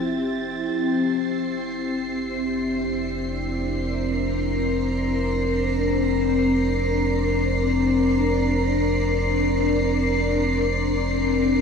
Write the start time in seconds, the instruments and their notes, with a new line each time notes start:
Already playing: analog synth bass F1, ambient pad F3 C4 E4 G4, synth texture A6
0.73 analog synth bass F1, synth texture C7
2.16 ambient pad D4
3.30 ambient pad A#4